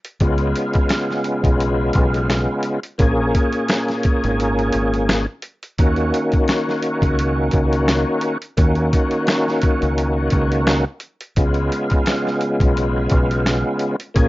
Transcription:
0.05 closed hi-hat medium
0.20 0.53 C#2 loud
0.20 2.79 C#3 medium
0.20 2.79 G#3 medium
0.20 2.80 B3 medium
0.20 2.80 F4 loud
0.20 kick loud
0.20 closed hi-hat medium
0.38 closed hi-hat soft
0.56 closed hi-hat medium
0.73 kick medium
0.73 closed hi-hat soft
0.89 snare loud
0.89 closed hi-hat medium
1.10 snare soft
1.24 closed hi-hat medium
1.44 1.91 B1 medium
1.44 kick medium
1.44 closed hi-hat medium
1.60 closed hi-hat medium
1.93 2.46 B1 loud
1.93 kick medium
1.93 closed hi-hat medium
2.14 closed hi-hat medium
2.30 snare loud
2.30 closed hi-hat medium
2.63 closed hi-hat medium
2.83 closed hi-hat medium
2.98 3.32 A#1 loud
2.98 5.26 A#2 medium
2.98 5.26 A#3 medium
2.98 5.26 C#4 medium
2.98 5.26 G#4 loud
2.98 kick loud
2.98 closed hi-hat medium
3.35 kick medium
3.35 closed hi-hat medium
3.53 closed hi-hat soft
3.68 snare loud
3.68 closed hi-hat medium
3.88 snare soft
3.88 closed hi-hat soft
4.03 kick loud
4.03 closed hi-hat medium
4.24 4.70 G#1 medium
4.24 closed hi-hat soft
4.40 closed hi-hat medium
4.59 closed hi-hat soft
4.73 5.25 G#1 medium
4.73 closed hi-hat medium
4.94 closed hi-hat medium
5.09 snare loud
5.09 closed hi-hat loud
5.42 closed hi-hat medium
5.63 closed hi-hat medium
5.78 6.11 D#2 loud
5.78 8.37 D#3 medium
5.78 8.38 A#3 medium
5.78 8.38 C#4 medium
5.78 8.38 F#4 loud
5.78 kick loud
5.78 closed hi-hat medium
5.96 closed hi-hat soft
6.14 closed hi-hat medium
6.32 kick medium
6.32 closed hi-hat soft
6.48 snare loud
6.48 closed hi-hat medium
6.69 snare soft
6.83 closed hi-hat medium
7.02 7.49 C#2 loud
7.02 kick loud
7.02 closed hi-hat soft
7.19 closed hi-hat medium
7.51 8.04 C#2 medium
7.51 kick loud
7.51 closed hi-hat medium
7.73 closed hi-hat medium
7.88 snare loud
7.88 closed hi-hat medium
8.21 closed hi-hat medium
8.42 closed hi-hat medium
8.57 8.90 D#2 loud
8.57 10.84 D#3 loud
8.57 10.84 A#3 medium
8.57 10.85 C#4 medium
8.57 10.85 F#4 loud
8.57 kick loud
8.57 closed hi-hat medium
8.75 closed hi-hat soft
8.93 kick medium
8.93 closed hi-hat medium
9.11 closed hi-hat soft
9.27 snare loud
9.27 closed hi-hat medium
9.48 snare soft
9.62 kick loud
9.62 closed hi-hat medium
9.82 10.29 C#2 medium
9.82 closed hi-hat soft
9.98 closed hi-hat medium
10.30 10.83 C#2 medium
10.30 kick medium
10.30 closed hi-hat medium
10.52 closed hi-hat medium
10.67 snare loud
10.67 closed hi-hat medium
11.00 closed hi-hat medium
11.21 closed hi-hat medium
11.36 11.69 C#2 loud
11.36 13.96 C#3 medium
11.36 13.96 G#3 medium
11.36 13.96 B3 medium
11.36 13.96 F4 loud
11.36 kick loud
11.36 closed hi-hat medium
11.54 closed hi-hat soft
11.72 closed hi-hat medium
11.90 kick loud
11.90 closed hi-hat soft
12.06 snare loud
12.06 closed hi-hat medium
12.27 snare soft
12.41 closed hi-hat medium
12.60 13.07 B1 medium
12.60 kick medium
12.60 closed hi-hat medium
12.77 closed hi-hat medium
13.10 13.62 B1 loud
13.10 kick loud
13.10 closed hi-hat medium
13.31 closed hi-hat medium
13.46 snare loud
13.46 closed hi-hat loud
13.79 closed hi-hat medium
14.00 closed hi-hat medium
14.14 14.28 A#1 loud
14.14 14.28 A#2 medium
14.14 14.28 A#3 medium
14.14 14.28 C#4 medium
14.14 14.28 G#4 loud
14.14 kick loud
14.14 closed hi-hat medium

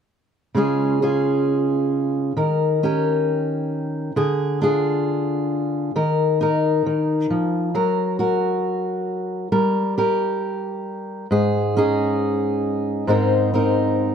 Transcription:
0.55 2.36 C#3 soft
0.55 2.31 G#3 soft
0.55 1.01 C#4 soft
0.55 1.02 F4 soft
0.55 1.02 G#4 soft
1.02 2.32 C#4 soft
1.02 2.32 F4 soft
1.02 2.37 G#4 soft
2.37 4.11 D#3 soft
2.37 2.85 A#4 soft
2.83 4.12 C#4 soft
2.83 4.12 G4 soft
2.83 4.17 A#4 soft
4.16 5.90 D3 soft
4.16 4.61 G#4 soft
4.62 5.90 D4 soft
4.62 5.91 F4 soft
4.62 5.96 G#4 soft
5.96 6.85 D#3 soft
5.96 6.40 A#4 soft
6.41 7.69 D#4 soft
6.41 7.70 A#4 soft
6.86 7.30 D#3 soft
7.30 7.74 F3 soft
7.75 9.51 F#3 soft
7.75 8.19 A#4 soft
8.19 9.47 F#4 soft
8.19 9.48 A#4 soft
9.52 11.25 G3 soft
9.52 9.97 A#4 soft
9.98 11.26 G4 soft
9.98 11.26 A#4 soft
11.31 13.06 G#2 soft
11.31 11.76 G#4 soft
11.77 13.04 C#4 soft
11.77 13.09 D#4 soft
11.77 13.10 G#4 soft
13.07 14.15 G#2 soft
13.07 14.15 G#3 soft
13.07 13.52 C4 soft
13.07 13.53 D#4 soft
13.07 13.54 A#4 soft
13.54 14.15 C4 soft
13.54 14.15 D#4 soft
13.54 14.15 A#4 soft

